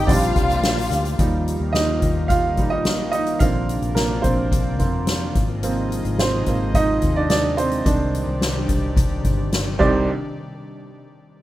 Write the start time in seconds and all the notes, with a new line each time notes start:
Already playing: G4 D5
0.07 A#1 F3 G3 A#3 C4 D4 F4 D5 F5, kick, hi-hat pedal, open hi-hat
0.22 hi-hat pedal, open hi-hat
0.36 C2, kick, hi-hat pedal, open hi-hat
0.50 hi-hat pedal, open hi-hat
0.63 A#1, snare, hi-hat pedal, open hi-hat
0.78 hi-hat pedal, open hi-hat
0.91 D2, snare, hi-hat pedal, open hi-hat
1.05 hi-hat pedal, open hi-hat
1.18 D#2 D#3 F3 G3 A#3 D#4 F4, kick, closed hi-hat
1.48 closed hi-hat
1.60 D#2
1.73 D#4 D#5, snare, closed hi-hat
2.02 D#2, kick, closed hi-hat
2.28 F4 F5, kick, closed hi-hat
2.57 A#1 F3 G3 D#4, kick, closed hi-hat
2.70 D#4 D#5
2.85 snare, closed hi-hat
3.12 D#4 D#5, closed hi-hat
3.27 closed hi-hat
3.39 A#1 C3 D3 F3 A#3 C4 D4 F4 F5, kick, closed hi-hat
3.69 closed hi-hat
3.82 A#1, closed hi-hat
3.95 A#3 A#4, snare, closed hi-hat
4.22 A#1 C4 C5, kick, closed hi-hat
4.52 kick, closed hi-hat
4.79 F2 D3 A#3 C4, kick, closed hi-hat
5.07 snare, closed hi-hat
5.35 G#1 C3 G#3 D#4, kick, closed hi-hat
5.63 F3 A#3 C4, closed hi-hat
5.92 closed hi-hat
6.05 G#1, closed hi-hat
6.19 C4 C5, snare, closed hi-hat
6.46 G#1 F3 A#3 C4, kick, closed hi-hat
6.74 D#4 D#5, kick, closed hi-hat
7.02 D#2, kick, closed hi-hat
7.16 D4 D5
7.30 D4 D5, snare, closed hi-hat
7.57 C4 C5, closed hi-hat
7.72 closed hi-hat
7.85 C2 D#3 G3 C4 D4, kick, closed hi-hat
8.15 closed hi-hat
8.27 C2
8.42 snare, closed hi-hat
8.69 C2, kick, closed hi-hat
8.97 kick, closed hi-hat
9.25 G1, kick, closed hi-hat
9.52 snare, closed hi-hat
9.79 C2 C3 D#3 G3 C4 D4 D#4 G4 D5, kick, crash